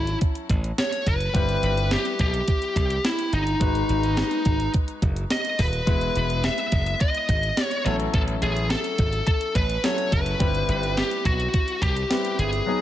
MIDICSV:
0, 0, Header, 1, 5, 480
1, 0, Start_track
1, 0, Tempo, 566038
1, 1141, Time_signature, 4, 2, 24, 8
1, 10866, End_track
2, 0, Start_track
2, 0, Title_t, "Lead electric guitar"
2, 0, Program_c, 0, 29
2, 0, Note_on_c, 0, 64, 78
2, 148, Note_off_c, 0, 64, 0
2, 671, Note_on_c, 0, 73, 105
2, 909, Note_on_c, 0, 71, 103
2, 914, Note_off_c, 0, 73, 0
2, 1634, Note_on_c, 0, 67, 89
2, 1647, Note_off_c, 0, 71, 0
2, 1852, Note_off_c, 0, 67, 0
2, 1870, Note_on_c, 0, 67, 86
2, 2589, Note_off_c, 0, 67, 0
2, 2593, Note_on_c, 0, 64, 80
2, 2830, Note_off_c, 0, 64, 0
2, 2833, Note_on_c, 0, 63, 82
2, 3994, Note_off_c, 0, 63, 0
2, 4508, Note_on_c, 0, 75, 95
2, 4744, Note_on_c, 0, 71, 97
2, 4752, Note_off_c, 0, 75, 0
2, 5465, Note_on_c, 0, 76, 96
2, 5484, Note_off_c, 0, 71, 0
2, 5942, Note_off_c, 0, 76, 0
2, 5945, Note_on_c, 0, 75, 102
2, 6479, Note_off_c, 0, 75, 0
2, 6479, Note_on_c, 0, 73, 102
2, 6661, Note_off_c, 0, 73, 0
2, 6664, Note_on_c, 0, 73, 95
2, 6729, Note_off_c, 0, 73, 0
2, 6902, Note_on_c, 0, 69, 95
2, 6967, Note_off_c, 0, 69, 0
2, 7143, Note_on_c, 0, 68, 82
2, 7365, Note_off_c, 0, 68, 0
2, 7380, Note_on_c, 0, 69, 94
2, 7852, Note_off_c, 0, 69, 0
2, 7862, Note_on_c, 0, 69, 92
2, 8101, Note_off_c, 0, 69, 0
2, 8104, Note_on_c, 0, 71, 89
2, 8348, Note_on_c, 0, 73, 89
2, 8350, Note_off_c, 0, 71, 0
2, 8568, Note_off_c, 0, 73, 0
2, 8586, Note_on_c, 0, 71, 93
2, 9306, Note_on_c, 0, 67, 84
2, 9326, Note_off_c, 0, 71, 0
2, 9527, Note_off_c, 0, 67, 0
2, 9544, Note_on_c, 0, 66, 77
2, 10024, Note_off_c, 0, 66, 0
2, 10027, Note_on_c, 0, 67, 87
2, 10510, Note_on_c, 0, 68, 91
2, 10519, Note_off_c, 0, 67, 0
2, 10866, Note_off_c, 0, 68, 0
2, 10866, End_track
3, 0, Start_track
3, 0, Title_t, "Grand piano"
3, 0, Program_c, 1, 0
3, 0, Control_c, 1, 64, 127
3, 0, Note_on_c, 1, 54, 61
3, 0, Note_on_c, 1, 61, 56
3, 0, Note_on_c, 1, 64, 56
3, 0, Note_on_c, 1, 69, 70
3, 863, Note_off_c, 1, 54, 0
3, 867, Note_off_c, 1, 61, 0
3, 869, Note_off_c, 1, 64, 0
3, 874, Note_off_c, 1, 69, 0
3, 1133, Note_on_c, 1, 55, 66
3, 1141, Note_on_c, 1, 60, 56
3, 1147, Note_on_c, 1, 64, 58
3, 1153, Control_c, 1, 64, 0
3, 1155, Note_on_c, 1, 71, 71
3, 1323, Control_c, 1, 64, 127
3, 3023, Note_off_c, 1, 55, 0
3, 3027, Note_off_c, 1, 60, 0
3, 3030, Note_off_c, 1, 64, 0
3, 3034, Note_off_c, 1, 71, 0
3, 3051, Note_on_c, 1, 56, 62
3, 3057, Note_on_c, 1, 63, 56
3, 3065, Note_on_c, 1, 66, 56
3, 3072, Note_on_c, 1, 71, 72
3, 3074, Control_c, 1, 64, 0
3, 3223, Control_c, 1, 64, 127
3, 4943, Note_off_c, 1, 56, 0
3, 4946, Note_off_c, 1, 63, 0
3, 4949, Note_off_c, 1, 66, 0
3, 4953, Note_off_c, 1, 71, 0
3, 4971, Note_on_c, 1, 56, 65
3, 4979, Note_on_c, 1, 59, 54
3, 4985, Note_on_c, 1, 64, 59
3, 4993, Note_on_c, 1, 71, 69
3, 4995, Control_c, 1, 64, 0
3, 5156, Control_c, 1, 64, 127
3, 6623, Note_off_c, 1, 56, 0
3, 6627, Note_off_c, 1, 59, 0
3, 6630, Note_off_c, 1, 64, 0
3, 6634, Note_off_c, 1, 71, 0
3, 6652, Note_on_c, 1, 54, 61
3, 6658, Note_on_c, 1, 59, 46
3, 6666, Note_on_c, 1, 64, 57
3, 6673, Control_c, 1, 64, 0
3, 6673, Note_on_c, 1, 69, 71
3, 6713, Note_on_c, 1, 61, 56
3, 6715, Note_off_c, 1, 59, 0
3, 6797, Control_c, 1, 64, 127
3, 8303, Note_off_c, 1, 54, 0
3, 8311, Note_off_c, 1, 64, 0
3, 8314, Note_off_c, 1, 69, 0
3, 8328, Note_off_c, 1, 61, 0
3, 8338, Note_on_c, 1, 54, 46
3, 8341, Note_on_c, 1, 61, 45
3, 8345, Note_on_c, 1, 64, 42
3, 8348, Note_on_c, 1, 69, 52
3, 8814, Note_off_c, 1, 64, 0
3, 8814, Note_on_c, 1, 55, 61
3, 8820, Note_off_c, 1, 54, 0
3, 8821, Note_off_c, 1, 61, 0
3, 8821, Note_on_c, 1, 60, 60
3, 8825, Note_off_c, 1, 69, 0
3, 8827, Note_on_c, 1, 64, 61
3, 8833, Note_on_c, 1, 71, 73
3, 8834, Control_c, 1, 64, 0
3, 8970, Control_c, 1, 64, 127
3, 10229, Note_off_c, 1, 55, 0
3, 10232, Note_off_c, 1, 60, 0
3, 10236, Note_off_c, 1, 64, 0
3, 10239, Note_off_c, 1, 71, 0
3, 10260, Note_on_c, 1, 55, 48
3, 10263, Note_on_c, 1, 60, 44
3, 10267, Note_on_c, 1, 64, 43
3, 10271, Note_on_c, 1, 71, 53
3, 10737, Note_on_c, 1, 54, 66
3, 10741, Note_off_c, 1, 55, 0
3, 10742, Note_off_c, 1, 60, 0
3, 10743, Note_on_c, 1, 59, 60
3, 10744, Note_off_c, 1, 64, 0
3, 10746, Note_off_c, 1, 71, 0
3, 10750, Note_on_c, 1, 63, 57
3, 10753, Control_c, 1, 64, 0
3, 10758, Note_on_c, 1, 68, 66
3, 10866, Note_off_c, 1, 54, 0
3, 10866, Note_off_c, 1, 59, 0
3, 10866, Note_off_c, 1, 63, 0
3, 10866, Note_off_c, 1, 68, 0
3, 10866, End_track
4, 0, Start_track
4, 0, Title_t, "Slap bass"
4, 0, Program_c, 2, 36
4, 0, Note_on_c, 2, 32, 88
4, 121, Note_off_c, 2, 32, 0
4, 421, Note_on_c, 2, 33, 81
4, 601, Note_off_c, 2, 33, 0
4, 904, Note_on_c, 2, 30, 88
4, 1083, Note_off_c, 2, 30, 0
4, 1143, Note_on_c, 2, 31, 94
4, 1322, Note_off_c, 2, 31, 0
4, 1381, Note_on_c, 2, 31, 96
4, 1651, Note_off_c, 2, 31, 0
4, 1862, Note_on_c, 2, 35, 79
4, 2042, Note_off_c, 2, 35, 0
4, 2341, Note_on_c, 2, 36, 77
4, 2521, Note_off_c, 2, 36, 0
4, 2820, Note_on_c, 2, 31, 86
4, 3001, Note_off_c, 2, 31, 0
4, 3061, Note_on_c, 2, 32, 93
4, 3241, Note_off_c, 2, 32, 0
4, 3302, Note_on_c, 2, 32, 88
4, 3572, Note_off_c, 2, 32, 0
4, 3781, Note_on_c, 2, 32, 82
4, 3961, Note_off_c, 2, 32, 0
4, 4259, Note_on_c, 2, 30, 82
4, 4440, Note_off_c, 2, 30, 0
4, 4741, Note_on_c, 2, 27, 87
4, 4921, Note_off_c, 2, 27, 0
4, 4980, Note_on_c, 2, 28, 104
4, 5161, Note_off_c, 2, 28, 0
4, 5224, Note_on_c, 2, 28, 88
4, 5493, Note_off_c, 2, 28, 0
4, 5701, Note_on_c, 2, 30, 86
4, 5882, Note_off_c, 2, 30, 0
4, 6180, Note_on_c, 2, 32, 87
4, 6361, Note_off_c, 2, 32, 0
4, 6662, Note_on_c, 2, 33, 92
4, 6842, Note_off_c, 2, 33, 0
4, 6903, Note_on_c, 2, 33, 107
4, 7082, Note_off_c, 2, 33, 0
4, 7142, Note_on_c, 2, 33, 98
4, 7412, Note_off_c, 2, 33, 0
4, 7622, Note_on_c, 2, 32, 81
4, 7802, Note_off_c, 2, 32, 0
4, 8101, Note_on_c, 2, 33, 77
4, 8281, Note_off_c, 2, 33, 0
4, 8585, Note_on_c, 2, 30, 83
4, 8764, Note_off_c, 2, 30, 0
4, 8823, Note_on_c, 2, 31, 102
4, 9003, Note_off_c, 2, 31, 0
4, 9059, Note_on_c, 2, 31, 99
4, 9330, Note_off_c, 2, 31, 0
4, 9543, Note_on_c, 2, 35, 84
4, 9723, Note_off_c, 2, 35, 0
4, 10022, Note_on_c, 2, 36, 84
4, 10202, Note_off_c, 2, 36, 0
4, 10503, Note_on_c, 2, 31, 92
4, 10682, Note_off_c, 2, 31, 0
4, 10866, End_track
5, 0, Start_track
5, 0, Title_t, "Drums"
5, 61, Note_on_c, 9, 42, 51
5, 146, Note_off_c, 9, 42, 0
5, 179, Note_on_c, 9, 42, 73
5, 183, Note_on_c, 9, 36, 87
5, 264, Note_off_c, 9, 42, 0
5, 268, Note_off_c, 9, 36, 0
5, 300, Note_on_c, 9, 42, 51
5, 385, Note_off_c, 9, 42, 0
5, 420, Note_on_c, 9, 36, 84
5, 423, Note_on_c, 9, 42, 77
5, 505, Note_off_c, 9, 36, 0
5, 508, Note_off_c, 9, 42, 0
5, 544, Note_on_c, 9, 42, 54
5, 629, Note_off_c, 9, 42, 0
5, 664, Note_on_c, 9, 38, 106
5, 664, Note_on_c, 9, 42, 82
5, 749, Note_off_c, 9, 38, 0
5, 749, Note_off_c, 9, 42, 0
5, 784, Note_on_c, 9, 42, 56
5, 869, Note_off_c, 9, 42, 0
5, 904, Note_on_c, 9, 36, 83
5, 905, Note_on_c, 9, 42, 74
5, 989, Note_off_c, 9, 36, 0
5, 990, Note_off_c, 9, 42, 0
5, 1022, Note_on_c, 9, 42, 52
5, 1107, Note_off_c, 9, 42, 0
5, 1141, Note_on_c, 9, 36, 109
5, 1141, Note_on_c, 9, 42, 80
5, 1226, Note_off_c, 9, 36, 0
5, 1226, Note_off_c, 9, 42, 0
5, 1261, Note_on_c, 9, 42, 45
5, 1346, Note_off_c, 9, 42, 0
5, 1382, Note_on_c, 9, 42, 71
5, 1467, Note_off_c, 9, 42, 0
5, 1505, Note_on_c, 9, 42, 50
5, 1590, Note_off_c, 9, 42, 0
5, 1620, Note_on_c, 9, 42, 76
5, 1622, Note_on_c, 9, 38, 112
5, 1705, Note_off_c, 9, 42, 0
5, 1707, Note_off_c, 9, 38, 0
5, 1740, Note_on_c, 9, 42, 48
5, 1825, Note_off_c, 9, 42, 0
5, 1859, Note_on_c, 9, 42, 69
5, 1862, Note_on_c, 9, 36, 88
5, 1944, Note_off_c, 9, 42, 0
5, 1946, Note_off_c, 9, 36, 0
5, 1982, Note_on_c, 9, 42, 50
5, 2067, Note_off_c, 9, 42, 0
5, 2100, Note_on_c, 9, 42, 77
5, 2103, Note_on_c, 9, 36, 88
5, 2185, Note_off_c, 9, 42, 0
5, 2188, Note_off_c, 9, 36, 0
5, 2220, Note_on_c, 9, 42, 51
5, 2305, Note_off_c, 9, 42, 0
5, 2341, Note_on_c, 9, 36, 82
5, 2346, Note_on_c, 9, 42, 76
5, 2426, Note_off_c, 9, 36, 0
5, 2431, Note_off_c, 9, 42, 0
5, 2463, Note_on_c, 9, 42, 56
5, 2548, Note_off_c, 9, 42, 0
5, 2583, Note_on_c, 9, 38, 104
5, 2583, Note_on_c, 9, 42, 85
5, 2668, Note_off_c, 9, 38, 0
5, 2668, Note_off_c, 9, 42, 0
5, 2701, Note_on_c, 9, 42, 53
5, 2786, Note_off_c, 9, 42, 0
5, 2822, Note_on_c, 9, 42, 74
5, 2907, Note_off_c, 9, 42, 0
5, 2941, Note_on_c, 9, 42, 51
5, 3025, Note_off_c, 9, 42, 0
5, 3059, Note_on_c, 9, 42, 83
5, 3061, Note_on_c, 9, 36, 117
5, 3144, Note_off_c, 9, 42, 0
5, 3145, Note_off_c, 9, 36, 0
5, 3181, Note_on_c, 9, 42, 48
5, 3266, Note_off_c, 9, 42, 0
5, 3301, Note_on_c, 9, 42, 71
5, 3386, Note_off_c, 9, 42, 0
5, 3421, Note_on_c, 9, 42, 48
5, 3506, Note_off_c, 9, 42, 0
5, 3537, Note_on_c, 9, 42, 78
5, 3539, Note_on_c, 9, 38, 116
5, 3622, Note_off_c, 9, 42, 0
5, 3624, Note_off_c, 9, 38, 0
5, 3655, Note_on_c, 9, 42, 45
5, 3740, Note_off_c, 9, 42, 0
5, 3775, Note_on_c, 9, 42, 71
5, 3780, Note_on_c, 9, 36, 84
5, 3860, Note_off_c, 9, 42, 0
5, 3864, Note_off_c, 9, 36, 0
5, 3899, Note_on_c, 9, 42, 49
5, 3984, Note_off_c, 9, 42, 0
5, 4017, Note_on_c, 9, 42, 75
5, 4022, Note_on_c, 9, 36, 87
5, 4101, Note_off_c, 9, 42, 0
5, 4107, Note_off_c, 9, 36, 0
5, 4137, Note_on_c, 9, 42, 50
5, 4222, Note_off_c, 9, 42, 0
5, 4259, Note_on_c, 9, 36, 82
5, 4261, Note_on_c, 9, 42, 73
5, 4344, Note_off_c, 9, 36, 0
5, 4346, Note_off_c, 9, 42, 0
5, 4379, Note_on_c, 9, 42, 57
5, 4464, Note_off_c, 9, 42, 0
5, 4498, Note_on_c, 9, 38, 102
5, 4499, Note_on_c, 9, 42, 80
5, 4583, Note_off_c, 9, 38, 0
5, 4584, Note_off_c, 9, 42, 0
5, 4619, Note_on_c, 9, 42, 54
5, 4704, Note_off_c, 9, 42, 0
5, 4739, Note_on_c, 9, 46, 73
5, 4741, Note_on_c, 9, 36, 82
5, 4824, Note_off_c, 9, 46, 0
5, 4826, Note_off_c, 9, 36, 0
5, 4858, Note_on_c, 9, 42, 50
5, 4943, Note_off_c, 9, 42, 0
5, 4978, Note_on_c, 9, 42, 88
5, 4980, Note_on_c, 9, 36, 109
5, 5062, Note_off_c, 9, 42, 0
5, 5065, Note_off_c, 9, 36, 0
5, 5098, Note_on_c, 9, 42, 50
5, 5183, Note_off_c, 9, 42, 0
5, 5219, Note_on_c, 9, 42, 70
5, 5304, Note_off_c, 9, 42, 0
5, 5342, Note_on_c, 9, 42, 50
5, 5427, Note_off_c, 9, 42, 0
5, 5458, Note_on_c, 9, 42, 80
5, 5460, Note_on_c, 9, 38, 115
5, 5543, Note_off_c, 9, 42, 0
5, 5545, Note_off_c, 9, 38, 0
5, 5578, Note_on_c, 9, 42, 49
5, 5663, Note_off_c, 9, 42, 0
5, 5697, Note_on_c, 9, 42, 72
5, 5701, Note_on_c, 9, 36, 84
5, 5782, Note_off_c, 9, 42, 0
5, 5786, Note_off_c, 9, 36, 0
5, 5821, Note_on_c, 9, 42, 50
5, 5906, Note_off_c, 9, 42, 0
5, 5939, Note_on_c, 9, 42, 76
5, 5944, Note_on_c, 9, 36, 86
5, 6024, Note_off_c, 9, 42, 0
5, 6029, Note_off_c, 9, 36, 0
5, 6060, Note_on_c, 9, 42, 51
5, 6145, Note_off_c, 9, 42, 0
5, 6180, Note_on_c, 9, 36, 81
5, 6182, Note_on_c, 9, 42, 75
5, 6265, Note_off_c, 9, 36, 0
5, 6267, Note_off_c, 9, 42, 0
5, 6302, Note_on_c, 9, 42, 51
5, 6387, Note_off_c, 9, 42, 0
5, 6421, Note_on_c, 9, 38, 105
5, 6422, Note_on_c, 9, 42, 87
5, 6506, Note_off_c, 9, 38, 0
5, 6507, Note_off_c, 9, 42, 0
5, 6539, Note_on_c, 9, 42, 52
5, 6624, Note_off_c, 9, 42, 0
5, 6662, Note_on_c, 9, 42, 73
5, 6747, Note_off_c, 9, 42, 0
5, 6781, Note_on_c, 9, 42, 50
5, 6866, Note_off_c, 9, 42, 0
5, 6899, Note_on_c, 9, 42, 79
5, 6901, Note_on_c, 9, 36, 118
5, 6984, Note_off_c, 9, 42, 0
5, 6986, Note_off_c, 9, 36, 0
5, 7019, Note_on_c, 9, 42, 50
5, 7104, Note_off_c, 9, 42, 0
5, 7140, Note_on_c, 9, 42, 71
5, 7225, Note_off_c, 9, 42, 0
5, 7263, Note_on_c, 9, 42, 50
5, 7348, Note_off_c, 9, 42, 0
5, 7379, Note_on_c, 9, 42, 76
5, 7380, Note_on_c, 9, 38, 114
5, 7463, Note_off_c, 9, 42, 0
5, 7465, Note_off_c, 9, 38, 0
5, 7498, Note_on_c, 9, 42, 50
5, 7583, Note_off_c, 9, 42, 0
5, 7618, Note_on_c, 9, 42, 72
5, 7621, Note_on_c, 9, 36, 82
5, 7703, Note_off_c, 9, 42, 0
5, 7706, Note_off_c, 9, 36, 0
5, 7739, Note_on_c, 9, 42, 48
5, 7824, Note_off_c, 9, 42, 0
5, 7858, Note_on_c, 9, 42, 74
5, 7863, Note_on_c, 9, 36, 88
5, 7942, Note_off_c, 9, 42, 0
5, 7948, Note_off_c, 9, 36, 0
5, 7978, Note_on_c, 9, 42, 53
5, 8063, Note_off_c, 9, 42, 0
5, 8100, Note_on_c, 9, 36, 82
5, 8104, Note_on_c, 9, 42, 76
5, 8185, Note_off_c, 9, 36, 0
5, 8188, Note_off_c, 9, 42, 0
5, 8222, Note_on_c, 9, 42, 57
5, 8307, Note_off_c, 9, 42, 0
5, 8343, Note_on_c, 9, 38, 108
5, 8344, Note_on_c, 9, 42, 85
5, 8428, Note_off_c, 9, 38, 0
5, 8428, Note_off_c, 9, 42, 0
5, 8463, Note_on_c, 9, 42, 52
5, 8548, Note_off_c, 9, 42, 0
5, 8584, Note_on_c, 9, 36, 86
5, 8585, Note_on_c, 9, 42, 76
5, 8669, Note_off_c, 9, 36, 0
5, 8670, Note_off_c, 9, 42, 0
5, 8701, Note_on_c, 9, 42, 55
5, 8786, Note_off_c, 9, 42, 0
5, 8821, Note_on_c, 9, 42, 80
5, 8822, Note_on_c, 9, 36, 112
5, 8906, Note_off_c, 9, 42, 0
5, 8907, Note_off_c, 9, 36, 0
5, 8942, Note_on_c, 9, 42, 46
5, 9027, Note_off_c, 9, 42, 0
5, 9063, Note_on_c, 9, 42, 68
5, 9148, Note_off_c, 9, 42, 0
5, 9186, Note_on_c, 9, 42, 50
5, 9271, Note_off_c, 9, 42, 0
5, 9305, Note_on_c, 9, 42, 78
5, 9307, Note_on_c, 9, 38, 109
5, 9390, Note_off_c, 9, 42, 0
5, 9392, Note_off_c, 9, 38, 0
5, 9424, Note_on_c, 9, 42, 49
5, 9509, Note_off_c, 9, 42, 0
5, 9543, Note_on_c, 9, 36, 86
5, 9543, Note_on_c, 9, 42, 75
5, 9628, Note_off_c, 9, 36, 0
5, 9628, Note_off_c, 9, 42, 0
5, 9664, Note_on_c, 9, 42, 50
5, 9749, Note_off_c, 9, 42, 0
5, 9783, Note_on_c, 9, 42, 73
5, 9785, Note_on_c, 9, 36, 88
5, 9868, Note_off_c, 9, 42, 0
5, 9870, Note_off_c, 9, 36, 0
5, 9903, Note_on_c, 9, 42, 51
5, 9987, Note_off_c, 9, 42, 0
5, 10022, Note_on_c, 9, 36, 81
5, 10028, Note_on_c, 9, 42, 75
5, 10107, Note_off_c, 9, 36, 0
5, 10113, Note_off_c, 9, 42, 0
5, 10146, Note_on_c, 9, 42, 54
5, 10231, Note_off_c, 9, 42, 0
5, 10266, Note_on_c, 9, 38, 109
5, 10266, Note_on_c, 9, 42, 84
5, 10351, Note_off_c, 9, 38, 0
5, 10351, Note_off_c, 9, 42, 0
5, 10385, Note_on_c, 9, 42, 53
5, 10470, Note_off_c, 9, 42, 0
5, 10507, Note_on_c, 9, 42, 74
5, 10592, Note_off_c, 9, 42, 0
5, 10622, Note_on_c, 9, 42, 51
5, 10707, Note_off_c, 9, 42, 0
5, 10866, End_track
0, 0, End_of_file